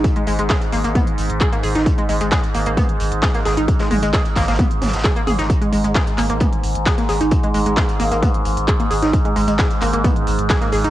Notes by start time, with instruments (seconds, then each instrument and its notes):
Already playing: synth drone G#2
0.04 kick, closed hi-hat
0.16 synth arpeggio sound G#3, closed hi-hat
0.27 sub bass G#1, synth arpeggio sound G#3, closed hi-hat, open hi-hat
0.39 sub bass G#1, synth arpeggio sound G#3, closed hi-hat
0.50 synth arpeggio sound G#4, kick, snare, clap, closed hi-hat
0.61 closed hi-hat
0.72 sub bass G#1, synth arpeggio sound A#3, closed hi-hat, open hi-hat
0.84 sub bass G#1, synth arpeggio sound A#3, closed hi-hat
0.95 synth arpeggio sound B3, kick, closed hi-hat, mid tom
1.07 closed hi-hat
1.18 sub bass G#1, closed hi-hat, open hi-hat
1.30 sub bass G#1, closed hi-hat
1.41 synth arpeggio sound G#4, kick, clap, closed hi-hat
1.52 synth arpeggio sound A#3, closed hi-hat
1.63 sub bass G#1, synth arpeggio sound G#4, closed hi-hat, open hi-hat
1.75 sub bass G#1, synth arpeggio sound D#4, snare, closed hi-hat
1.86 kick, closed hi-hat
1.98 synth arpeggio sound G#3, closed hi-hat
2.09 sub bass G#1, synth arpeggio sound G#3, closed hi-hat, open hi-hat
2.21 sub bass G#1, synth arpeggio sound G#3, closed hi-hat
2.32 synth arpeggio sound G#4, kick, snare, clap, closed hi-hat
2.43 closed hi-hat
2.54 sub bass G#1, synth arpeggio sound A#3, closed hi-hat, open hi-hat
2.66 sub bass G#1, synth arpeggio sound A#3, closed hi-hat
2.77 synth arpeggio sound B3, kick, closed hi-hat, mid tom
2.89 closed hi-hat
3.00 sub bass G#1, closed hi-hat, open hi-hat
3.12 sub bass G#1, closed hi-hat
3.22 synth arpeggio sound G#4, kick, snare, clap, closed hi-hat
3.34 synth arpeggio sound A#3, snare, closed hi-hat
3.45 sub bass G#1, synth arpeggio sound G#4, snare, closed hi-hat, open hi-hat
3.57 sub bass G#1, synth arpeggio sound D#4, closed hi-hat
3.68 kick, closed hi-hat
3.79 synth arpeggio sound G#3, snare, closed hi-hat
3.91 sub bass G#1, synth arpeggio sound G#3, mid tom, open hi-hat
4.02 sub bass G#1, synth arpeggio sound G#3, closed hi-hat
4.13 synth arpeggio sound G#4, kick, snare, clap, closed hi-hat
4.25 closed hi-hat
4.36 sub bass G#1, synth arpeggio sound A#3, kick, snare, clap, closed hi-hat, open hi-hat
4.42 snare, closed hi-hat
4.48 sub bass G#1, synth arpeggio sound A#3, snare, closed hi-hat
4.53 snare, closed hi-hat
4.59 synth arpeggio sound B3, kick, closed hi-hat, mid tom
4.71 closed hi-hat
4.81 sub bass G#1, snare, closed hi-hat, mid tom, open hi-hat
4.87 snare, closed hi-hat
4.93 sub bass G#1, snare, closed hi-hat
4.98 snare, closed hi-hat
5.04 synth arpeggio sound G#4, kick, snare, clap, closed hi-hat
5.16 synth arpeggio sound A#3, closed hi-hat
5.27 sub bass G#1, synth arpeggio sound G#4, closed hi-hat, mid tom, open hi-hat
5.39 sub bass G#1, synth arpeggio sound D#4, snare, closed hi-hat
5.50 synth drone G#2, kick, closed hi-hat
5.62 synth arpeggio sound G#3, closed hi-hat
5.72 sub bass G#1, synth arpeggio sound G#3, closed hi-hat, open hi-hat
5.84 sub bass G#1, synth arpeggio sound G#3, closed hi-hat
5.94 synth arpeggio sound G#4, kick, snare, clap, closed hi-hat
6.07 closed hi-hat
6.18 sub bass G#1, synth arpeggio sound A#3, clap, closed hi-hat, open hi-hat
6.30 sub bass G#1, synth arpeggio sound A#3, closed hi-hat
6.40 synth arpeggio sound B3, kick, closed hi-hat, mid tom
6.53 closed hi-hat
6.63 sub bass G#1, closed hi-hat, open hi-hat
6.75 sub bass G#1, closed hi-hat
6.86 synth arpeggio sound G#4, kick, snare, clap, closed hi-hat
6.98 synth arpeggio sound A#3, snare, closed hi-hat
7.08 sub bass G#1, synth arpeggio sound G#4, snare, closed hi-hat, open hi-hat
7.21 sub bass G#1, synth arpeggio sound D#4, closed hi-hat
7.31 kick, closed hi-hat
7.43 synth arpeggio sound G#3, closed hi-hat
7.54 sub bass G#1, synth arpeggio sound G#3, closed hi-hat, open hi-hat
7.66 sub bass G#1, synth arpeggio sound G#3, closed hi-hat
7.77 synth arpeggio sound G#4, kick, snare, clap, closed hi-hat
7.89 closed hi-hat
7.99 sub bass G#1, synth arpeggio sound A#3, closed hi-hat, open hi-hat
8.12 sub bass G#1, synth arpeggio sound A#3, closed hi-hat
8.22 synth arpeggio sound B3, kick, closed hi-hat, mid tom
8.34 closed hi-hat
8.45 sub bass G#1, closed hi-hat, open hi-hat
8.57 sub bass G#1, closed hi-hat
8.68 synth arpeggio sound G#4, kick, clap, closed hi-hat
8.80 synth arpeggio sound A#3, closed hi-hat
8.91 sub bass G#1, synth arpeggio sound G#4, closed hi-hat, open hi-hat
9.02 sub bass G#1, synth arpeggio sound D#4, snare, closed hi-hat
9.13 kick, closed hi-hat
9.25 synth arpeggio sound G#3, closed hi-hat
9.36 sub bass G#1, synth arpeggio sound G#3, closed hi-hat, open hi-hat
9.47 sub bass G#1, synth arpeggio sound G#3, closed hi-hat
9.58 synth arpeggio sound G#4, kick, snare, clap, closed hi-hat
9.71 closed hi-hat
9.81 sub bass G#1, synth arpeggio sound A#3, clap, closed hi-hat, open hi-hat
9.93 sub bass G#1, synth arpeggio sound A#3, closed hi-hat
10.04 synth arpeggio sound B3, kick, closed hi-hat, mid tom
10.16 closed hi-hat
10.27 sub bass G#1, closed hi-hat, open hi-hat
10.39 sub bass G#1, closed hi-hat
10.50 synth arpeggio sound G#4, kick, snare, clap, closed hi-hat
10.61 synth arpeggio sound A#3, snare, closed hi-hat
10.72 sub bass G#1, synth arpeggio sound G#4, snare, closed hi-hat, open hi-hat
10.84 sub bass G#1, synth arpeggio sound D#4, closed hi-hat